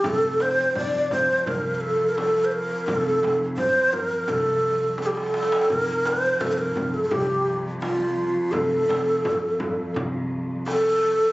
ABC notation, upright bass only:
X:1
M:4/4
L:1/16
Q:1/4=85
K:none
V:1 name="Upright bass" clef=bass
F,,,4 F,,,2 F,,, z C,,8 | F,,,2 F,,,2 F,,4 C,,8 | F,,,4 F,,,2 F,,, z C,,8 | F,,,2 F,,,2 F,,4 C,,8 |]